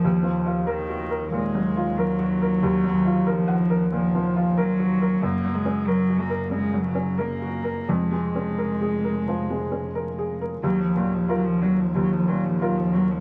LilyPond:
<<
  \new Staff \with { instrumentName = "Felt piano" } { \time 4/4 \key ees \minor \tempo 4 = 92 \tuplet 3/2 { ees,8 f8 f'8 bes'8 ges'8 bes'8 bes,8 ges8 f'8 bes'8 ges'8 bes'8 } | \tuplet 3/2 { ees,8 ges8 f'8 bes'8 ges''8 bes'8 bes,8 f8 f'8 bes'8 ges'8 bes'8 } | \tuplet 3/2 { ges,8 ges8 des'8 bes'8 ges'8 bes'8 des8 ges8 des'8 bes'8 ges'8 bes'8 } | \tuplet 3/2 { f,8 aes8 des'8 bes'8 aes'8 bes'8 f8 aes8 des'8 bes'8 aes'8 bes'8 } |
ees,8 bes,8 <f' bes'>8 ges8 ees,8 bes,8 <f' bes'>8 ges8 | }
  \new Staff \with { instrumentName = "Cello" } { \clef bass \time 4/4 \key ees \minor f4 ees4 aes4 ges4~ | ges4 f4 f4 ges4 | bes8 aes8 ges8 bes8 aes8 ges8 bes4 | aes2.~ aes8. r16 |
ges16 f16 ges16 f16 ges16 f16 ges16 f16 ges16 f16 ges16 f16 ges16 f16 ges16 f16 | }
  \new Staff \with { instrumentName = "Double bass" } { \clef bass \time 4/4 \key ees \minor ees,1~ | ees,1 | ges,,1 | f,,1 |
ees,1 | }
>>